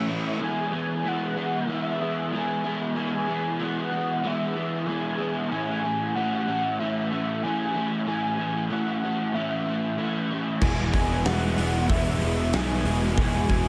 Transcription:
Already playing: A2 E3 A3 A4 C#5 E5
0.07 A3 C#4 E4
0.40 E3 G#3 B3 E4 G#5
0.71 G#3 B3 E4
1.05 E3 G#3 B3 E4 F#5
1.36 G#3 B3 E4
1.67 E3 G#3 B3 E4 E5
2.01 G#3 B3 E4
2.31 E3 G#3 B3 E4 G#5
2.64 G#3 B3 E4
2.95 E3 G#3 B3 E4 G#5
3.28 G#3 B3 E4
3.59 E3 G#3 B3 E4
3.63 F#5
3.91 G#3 B3 E4
4.23 E3 G#3 B3 E4 E5
4.56 G#3 B3 E4
4.86 E3 G#3 B3 E4 G#5
5.18 G#3 B3 E4
5.51 A2 E3 A3 C#4 E4 G#5
5.83 A3 C#4 E4
6.15 E3 A3 C#4 E4 F#5
6.47 A3 C#4 E4
6.79 A2 E3 A3 C#4 E4 E5
7.11 A3 C#4 E4
7.43 E3 A3 C#4 E4 G#5
7.74 A3 C#4 E4
8.06 A2 E3 A3 C#4 E4 G#5
8.38 A3 C#4 E4
8.70 E3 A3 C#4 E4 F#5
9.03 A3 C#4 E4
9.33 A2 E3 A3 C#4 E4 E5
9.66 A3 C#4 E4
9.97 E3 A3 C#4 E4
10.30 A3 C#4 E4
10.60 E1 E2 B2 E3 G#3 B3 E4 E5 G#5, kick, crash
10.65 G#3 F#4 B4
10.93 E1 E3 G#3 B3 E4, kick, open hi-hat
11.25 E1 E3 G#3 B3 E4 F#5, snare, open hi-hat
11.56 E1 B2 E3 G#3 B3 E4, open hi-hat
11.60 E2
11.88 E1 E2 B2 E3 G#3 B3 E4 E5, kick, open hi-hat
12.21 E1 E3 G#3 B3 E4, open hi-hat
12.53 B1 E2 B2 E3 G#3 B3 E4 G#5, snare, open hi-hat
12.85 E1 E3 G#3 B3 E4, open hi-hat
13.14 E1 E2 G#5, kick
13.18 E2 B2 E3 G#3 B3 E4, open hi-hat
13.49 E3 G#3 B3 E4, kick, open hi-hat

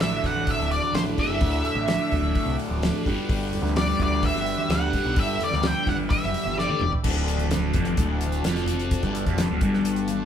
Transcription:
Already playing: A1 D2 A2 D3 A3 D4 F#4 D5
0.00 E5, snare, open hi-hat
0.24 A1 F#5, kick, snare, open hi-hat, low conga
0.36 high conga
0.47 E5, kick, open hi-hat
0.58 D1, snare
0.71 D5, open hi-hat
0.83 high conga
0.94 A1 C5, snare, open hi-hat
1.06 high conga
1.18 A2 D3 E5, kick, open hi-hat, low conga
1.23 D2
1.29 F#1
1.41 D2 A2, kick, open hi-hat
1.45 D3
1.65 open hi-hat, low conga
1.75 A1
1.88 snare, open hi-hat
2.12 D1, kick, open hi-hat, low conga
2.24 high conga
2.35 kick, open hi-hat
2.45 C2
2.59 open hi-hat
2.69 D1, high conga
2.83 snare, open hi-hat
2.94 high conga
3.05 G1 G2 D3 G3 B4, kick, open hi-hat, low conga
3.11 G3
3.29 G1, kick, open hi-hat
3.52 open hi-hat, low conga
3.62 D2, snare
3.76 D5, snare, open hi-hat
3.99 D2, kick, open hi-hat, low conga
4.03 D5
4.12 high conga
4.23 E5, kick, open hi-hat
4.34 G1, snare
4.46 open hi-hat
4.58 high conga
4.69 D2 G2 D3 F#5, snare, open hi-hat
4.74 G3
4.93 G2 D3 E4, kick, open hi-hat, low conga
4.97 G3
5.05 B1
5.16 G2 E5, kick, open hi-hat
5.39 open hi-hat, low conga
5.44 D5
5.50 D2, snare, high conga
5.63 G5, snare, open hi-hat
5.86 G1 F#5, kick, snare, open hi-hat, low conga
5.98 high conga
6.09 E5, kick, open hi-hat, high conga
6.23 F#1, snare
6.33 open hi-hat, low conga
6.44 G1, high conga
6.58 G2 D3 G3 D5, snare
6.68 high tom, high conga
6.79 E1, mid tom, low conga
6.93 floor tom
7.03 D1 D2 A3 D4 F#4 A4, kick, crash
7.28 closed hi-hat
7.38 closed hi-hat, high conga
7.51 snare, closed hi-hat, low conga
7.74 F1 F2, kick, closed hi-hat, low conga
7.85 closed hi-hat, high conga
7.97 D1 D2, kick, closed hi-hat
8.21 closed hi-hat, high conga
8.32 closed hi-hat
8.44 F1 F2, snare, closed hi-hat
8.56 snare, closed hi-hat, high conga
8.66 closed hi-hat, high conga, low conga
8.80 closed hi-hat
8.91 kick, closed hi-hat
9.03 G1 G2, kick, closed hi-hat
9.15 closed hi-hat
9.25 F1 F2, kick, closed hi-hat, high conga
9.38 snare, closed hi-hat, low conga
9.50 D1 D2
9.61 G1 G2, kick, closed hi-hat, low conga
9.73 snare, high conga
9.85 closed hi-hat
9.96 closed hi-hat
10.08 closed hi-hat, high conga

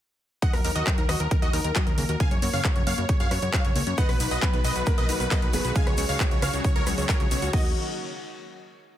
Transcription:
0.42 D#3 D#5 F#5, kick, closed hi-hat
0.53 D#2 F#3 A#4, cross-stick, open hi-hat
0.64 D#2 D#4 A#4, open hi-hat
0.75 D#2 F#4 A#4 D#5, closed hi-hat
0.87 F#3 A#4, kick, clap, closed hi-hat
0.98 D#2 D#3 A#4, closed hi-hat
1.09 D#2 F#4 D#5, cross-stick, open hi-hat
1.20 D#2 F#4 A#4, closed hi-hat
1.31 D#3 A#4, kick, closed hi-hat
1.42 D#2 F#3 F#4 D#5, closed hi-hat
1.53 D#2 D#4 A#4, open hi-hat
1.64 D#2 A#4, closed hi-hat
1.76 F#3 F#4 D#5, kick, clap, closed hi-hat
1.87 D#2 D#3 A#4, closed hi-hat
1.98 C#2 A#3 A#4, open hi-hat
2.09 D#2 F#4 A#4, closed hi-hat
2.20 C#3 F5 G#5, kick, closed hi-hat
2.31 F#2 F#3 C#5, closed hi-hat
2.42 F#2 A#3 C#5, open hi-hat
2.53 F#2 C#3 C#5 F5, open hi-hat
2.65 F#3 C#5, kick, clap, closed hi-hat
2.76 F#2 C#3 C#5, closed hi-hat
2.87 F#2 A#3 C#5 F5, open hi-hat
2.98 F#2 A#3 C#5, closed hi-hat
3.09 C#3 C#5, kick, closed hi-hat
3.20 F#2 F#3 C#5 F5, closed hi-hat
3.31 F#2 F#3 C#5, cross-stick, open hi-hat
3.42 F#2 C#3 C#5, closed hi-hat
3.53 F#3 C#5 F5, kick, clap, closed hi-hat
3.65 F#2 C#3 C#5, closed hi-hat
3.76 C#2 A#3 C#5, open hi-hat
3.87 F#2 C#4 C#5, closed hi-hat
3.98 D#3 F#3 B3 F#4 B4 D#5 F#5, kick, closed hi-hat, shaker
4.09 B1 F#3 B4, cross-stick, open hi-hat
4.20 B1 D#4 B4, open hi-hat, shaker
4.31 B1 D#3 F#3 B3 F#4 B4 D#5, closed hi-hat, shaker
4.42 F#3 B3 B4, kick, clap, closed hi-hat, shaker
4.53 B1 D#3 F#3 B3 F#4 B4, closed hi-hat
4.64 B1 B4 D#5, open hi-hat, shaker
4.76 B1 D#3 F#3 B3 F#4 B4, closed hi-hat, shaker
4.86 D#3 A#3 A#4 B4, kick, closed hi-hat, shaker
4.98 B1 F#3 B4 D#5, closed hi-hat
5.09 B1 D#3 F#3 B3 D#4 F#4 B4, open hi-hat, shaker
5.20 B1 B4, closed hi-hat, shaker
5.31 D#3 F#3 B3 F#4 B4 D#5, kick, clap, closed hi-hat, shaker
5.42 B1 D#3 B4, closed hi-hat
5.53 F#1 D#3 F#3 G#3 B3 F#4 G#4 B4, open hi-hat, shaker
5.64 B1 F#4 B4, closed hi-hat, shaker
5.75 C#3 F#3 G#3 F#4 F5 G#5, kick, closed hi-hat, shaker
5.87 C#2 F#3 C#5, cross-stick, closed hi-hat
5.97 C#2 C#4 C#5, open hi-hat, shaker
6.09 C#2 C#3 F#3 G#3 F#4 C#5 F5, open hi-hat, shaker
6.20 F#3 C#5, kick, clap, closed hi-hat, shaker
6.31 C#2 C#3 F#3 G#3 F#4 C#5, closed hi-hat
6.42 C#2 C#4 C#5 F5, cross-stick, open hi-hat, shaker
6.53 C#2 C#3 F#3 G#3 C#4 F#4 C#5, closed hi-hat, shaker
6.64 C#3 C#5, kick, closed hi-hat, shaker
6.76 C#2 F#3 A#4 C#5, closed hi-hat
6.87 C#2 C#3 F#3 G#3 F#4 C#5, cross-stick, open hi-hat, shaker
6.98 C#2 C#3 C#5, closed hi-hat, shaker
7.09 C#3 F#3 G#3 F#4 A#4 C#5, kick, clap, closed hi-hat, shaker
7.20 C#2 C#3 C#5, closed hi-hat
7.31 B1 C#3 F#3 G#3 C#4 F#4 C#5, open hi-hat, shaker
7.42 C#2 F#4 C#5, closed hi-hat, shaker
7.53 D#3 F#3 A#3 F#4 D#5, kick, crash

